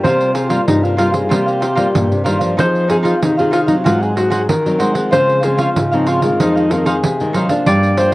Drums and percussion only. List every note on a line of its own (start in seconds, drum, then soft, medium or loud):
0.04 pandeiro medium
0.21 pandeiro soft
0.35 pandeiro medium
0.50 pandeiro medium
0.68 pandeiro medium
0.85 pandeiro soft
0.98 pandeiro medium
1.14 pandeiro medium
1.31 pandeiro medium
1.48 pandeiro soft
1.62 pandeiro medium
1.77 pandeiro medium
1.95 pandeiro medium
2.12 pandeiro soft
2.26 pandeiro medium
2.41 pandeiro medium
2.59 pandeiro medium
2.75 pandeiro soft
2.90 pandeiro medium
3.05 pandeiro soft
3.22 pandeiro medium
3.39 pandeiro soft
3.53 pandeiro medium
3.68 pandeiro medium
3.86 pandeiro medium
4.03 pandeiro soft
4.17 pandeiro medium
4.32 pandeiro medium
4.49 pandeiro medium
4.66 pandeiro soft
4.80 pandeiro medium
4.95 pandeiro medium
5.13 pandeiro medium
5.30 pandeiro soft
5.43 pandeiro medium
5.59 pandeiro medium
5.76 pandeiro medium
5.93 pandeiro soft
6.07 pandeiro medium
6.22 pandeiro medium
6.40 pandeiro medium
6.57 pandeiro soft
6.71 pandeiro medium
6.86 pandeiro medium
7.04 pandeiro medium
7.20 pandeiro soft
7.34 pandeiro medium
7.49 pandeiro medium
7.66 pandeiro medium
7.83 pandeiro soft
7.97 pandeiro medium